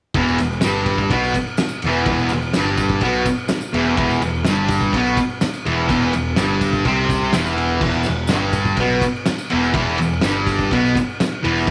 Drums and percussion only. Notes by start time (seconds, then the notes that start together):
0.14 kick, ride
0.28 tambourine
0.38 ride, tambourine
0.52 tambourine
0.61 snare, ride, tambourine
0.86 kick, ride
0.98 kick, tambourine
1.10 kick, ride, tambourine
1.24 tambourine
1.34 kick, ride, tambourine
1.47 tambourine
1.57 snare, ride, tambourine
1.69 tambourine
1.82 ride
1.93 tambourine
2.06 kick, ride
2.19 tambourine
2.29 ride, tambourine
2.42 tambourine
2.53 snare, ride, tambourine
2.78 kick, ride, tambourine
2.90 kick
3.01 kick, ride, tambourine
3.13 tambourine
3.25 kick, ride, tambourine
3.38 tambourine
3.48 snare, ride, tambourine
3.61 tambourine
3.74 ride
3.85 tambourine
3.97 kick, ride
4.10 tambourine
4.22 ride, tambourine
4.35 tambourine
4.45 snare, ride, tambourine
4.68 kick, ride, tambourine
4.81 kick, tambourine
4.92 kick, ride, tambourine
5.06 tambourine
5.17 kick, ride, tambourine
5.30 tambourine
5.41 snare, ride, tambourine
5.54 tambourine
5.66 ride
5.89 kick, ride, tambourine
6.02 tambourine
6.13 ride, tambourine
6.36 snare, ride, tambourine
6.61 kick, ride, tambourine
6.73 kick, tambourine
6.85 kick, ride, tambourine
7.09 kick, ride, tambourine
7.33 snare, ride, tambourine
7.46 tambourine
7.58 ride, tambourine
7.68 tambourine
7.81 kick, crash
7.92 tambourine
8.03 ride, tambourine
8.27 snare, ride, tambourine
8.53 kick, ride, tambourine
8.65 kick, tambourine
8.77 kick, ride, tambourine
8.90 tambourine
9.01 kick, ride, tambourine
9.16 tambourine
9.26 snare, ride, tambourine
9.38 tambourine
9.50 ride
9.64 tambourine
9.74 kick, ride
9.89 tambourine
9.98 ride, tambourine
10.13 tambourine
10.21 snare, ride, tambourine
10.47 kick, ride, tambourine
10.59 kick, tambourine
10.71 kick, ride, tambourine
10.85 tambourine
10.95 kick, ride, tambourine
11.09 tambourine
11.20 snare, ride, tambourine
11.45 ride
11.57 tambourine
11.67 kick